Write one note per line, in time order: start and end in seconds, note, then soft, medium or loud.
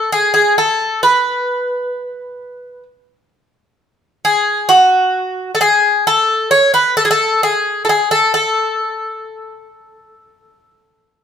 0.00 0.12 A4 medium
0.12 0.33 G#4 medium
0.34 0.55 G#4 medium
0.58 1.00 A4 medium
1.03 2.83 B4 medium
4.25 4.72 G#4 medium
4.69 5.50 F#4 medium
5.55 5.60 A4 medium
5.61 6.04 G#4 medium
6.07 6.50 A4 medium
6.51 6.73 C#5 medium
6.74 6.96 B4 medium
6.97 7.04 A4 medium
7.05 7.10 G#4 medium
7.11 7.41 A4 medium
7.43 7.84 G#4 medium
7.85 7.89 A4 medium
7.89 8.11 G#4 medium
8.11 8.33 A4 medium
8.34 11.24 A4 medium